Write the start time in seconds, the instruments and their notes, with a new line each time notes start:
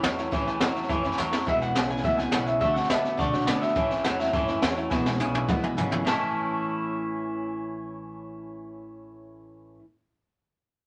Already playing: clean electric guitar C#5
0.03 upright bass E2, clean electric guitar A2 F#3, steel-string acoustic guitar E3 A3 C#4 E4, honky-tonk piano C#5 E5 G5, snare, hi-hat pedal
0.17 steel-string acoustic guitar A3 C#4 E4, honky-tonk piano C#5 E5 A5, snare
0.31 upright bass A1, steel-string acoustic guitar A2 E3 A3 C#4 E4, honky-tonk piano C#5 E5 B5, kick, snare
0.45 steel-string acoustic guitar A3 C#4 E4, honky-tonk piano C#5 E5 A5, snare
0.60 upright bass E2, clean electric guitar A2 F#3, steel-string acoustic guitar E3 A3 C#4 E4, honky-tonk piano C#5 E5 F#5, snare, hi-hat pedal
0.75 steel-string acoustic guitar A3 C#4 E4, honky-tonk piano C#5 E5 A5, snare
0.83 snare
0.89 upright bass G2, steel-string acoustic guitar A2 E3 A3 C#4 E4, honky-tonk piano C#5 E5 A5, kick, snare
1.03 upright bass F#2, steel-string acoustic guitar A3 C#4 E4, honky-tonk piano C#5 E5 B5, snare
1.12 snare
1.17 upright bass E2, clean electric guitar A2 F#3, steel-string acoustic guitar E3 A3 C#4 E4, honky-tonk piano C#5 E5 G5 A5, snare, hi-hat pedal
1.31 steel-string acoustic guitar A3 C#4 E4, honky-tonk piano C#5 E5 A5, snare
1.46 upright bass E1, steel-string acoustic guitar E2 B2 E3 G#3 B3 E4, honky-tonk piano B4 E5 G#5, clean electric guitar E5, kick, snare
1.60 steel-string acoustic guitar E3 G#3 B3 E4, honky-tonk piano B4 E5 G#5, clean electric guitar F#5, snare
1.74 upright bass B1, clean electric guitar E2 C#3, steel-string acoustic guitar E3 G#3 B3, honky-tonk piano B4 E5 B5, snare, hi-hat pedal
1.78 steel-string acoustic guitar E4
1.88 steel-string acoustic guitar G#3 B3 E4, honky-tonk piano B4 E5 F#5, clean electric guitar G#5, snare
1.93 steel-string acoustic guitar E3
1.97 snare
2.02 upright bass D2, steel-string acoustic guitar E2 B2 E3 G#3 B3, honky-tonk piano B4 E5 G#5, clean electric guitar E5, kick, snare
2.06 steel-string acoustic guitar E4
2.17 upright bass C#2, steel-string acoustic guitar E3 G#3 B3 E4, honky-tonk piano B4 E5 G#5, clean electric guitar G#5, snare
2.30 upright bass B1, clean electric guitar E2 C#3 F#5, steel-string acoustic guitar E3 G#3 B3 E4, honky-tonk piano B4 E5 F#5, snare, hi-hat pedal
2.45 steel-string acoustic guitar G#3 B3 E4, honky-tonk piano B4 E5 G#5, clean electric guitar E5, snare
2.50 steel-string acoustic guitar E3
2.59 upright bass D2, steel-string acoustic guitar D3 A3 D4, honky-tonk piano D5 F#5 A5, clean electric guitar E5, kick, snare
2.63 steel-string acoustic guitar F#4
2.74 steel-string acoustic guitar A3 D4 F#4, honky-tonk piano D5 F#5 A5, clean electric guitar F#5, snare
2.83 snare
2.88 upright bass A2, steel-string acoustic guitar D3 A3 D4 F#4, clean electric guitar B3 E5, honky-tonk piano D5 A5, snare, hi-hat pedal
3.03 steel-string acoustic guitar A3 D4 F#4, honky-tonk piano D5 F#5 A5, snare
3.17 upright bass B2, steel-string acoustic guitar D3 A3 D4 F#4, honky-tonk piano D5 F#5 A5, clean electric guitar D5, kick, snare
3.32 upright bass B2, steel-string acoustic guitar A3 D4 F#4, clean electric guitar C#5, honky-tonk piano D5 F#5 A5, snare
3.40 snare
3.46 upright bass A2, steel-string acoustic guitar D3 A3 D4 F#4, clean electric guitar B3 D5, honky-tonk piano D5 F#5 A5, snare, hi-hat pedal
3.61 steel-string acoustic guitar A3 D4 F#4, honky-tonk piano D5 F#5 A5, clean electric guitar E5, snare
3.68 snare
3.75 upright bass A1, steel-string acoustic guitar A2 E3 A3 C#4 E4, honky-tonk piano C#5 E5 A5, kick, snare
3.90 steel-string acoustic guitar A3 C#4 E4, honky-tonk piano C#5 E5 G5, snare
3.97 snare
4.04 upright bass E2, clean electric guitar A2 F#3 F#5, steel-string acoustic guitar E3 A3 C#4 E4, honky-tonk piano C#5 E5 A5, snare, hi-hat pedal
4.18 steel-string acoustic guitar C#4 E4, honky-tonk piano C#5 E5 A5, clean electric guitar E5, snare
4.22 steel-string acoustic guitar A3, snare
4.33 upright bass G2, steel-string acoustic guitar A2 E3 A3 C#4, honky-tonk piano C#5 E5 A5, kick, snare
4.37 steel-string acoustic guitar E4
4.48 upright bass F#2, steel-string acoustic guitar C#4 E4, honky-tonk piano C#5 E5 A5, snare
4.52 steel-string acoustic guitar A3
4.61 upright bass E2, clean electric guitar A2 F#3, steel-string acoustic guitar E3 A3, honky-tonk piano C#5 E5 A5, snare, hi-hat pedal
4.66 steel-string acoustic guitar C#4 E4
4.76 steel-string acoustic guitar A3 C#4 E4, honky-tonk piano C#5 E5 A5, snare
4.90 upright bass E1, steel-string acoustic guitar E2 B2 E3 G#3 B3 E4, honky-tonk piano B4 E5 G#5, kick, snare
5.06 steel-string acoustic guitar E3 G#3 B3 E4, honky-tonk piano B4 E5 G#5, snare
5.19 upright bass B1, clean electric guitar E2 C#3, steel-string acoustic guitar E3 G#3 B3 E4, honky-tonk piano B4 E5 G#5, hi-hat pedal, high tom
5.34 steel-string acoustic guitar E3 G#3 B3 E4, honky-tonk piano B4 E5 G#5, high tom
5.48 upright bass D2, steel-string acoustic guitar E2 B2 E3 G#3 B3 E4, honky-tonk piano B4 E5 F#5, kick, mid tom
5.62 upright bass C#2, steel-string acoustic guitar E3 G#3 B3 E4, honky-tonk piano B4 E5 G#5, mid tom
5.77 upright bass G#1, clean electric guitar E2 C#3, steel-string acoustic guitar E3 G#3 B3 E4, honky-tonk piano B4 E5 G#5, floor tom, hi-hat pedal
5.90 steel-string acoustic guitar G#3 B3 E4, honky-tonk piano B4 E5 G#5, floor tom
5.95 steel-string acoustic guitar E3
6.03 upright bass A1, steel-string acoustic guitar A2, honky-tonk piano C#5 E5, snare
6.07 steel-string acoustic guitar E3 A3 C#4, honky-tonk piano A5, clean electric guitar A5
6.12 steel-string acoustic guitar E4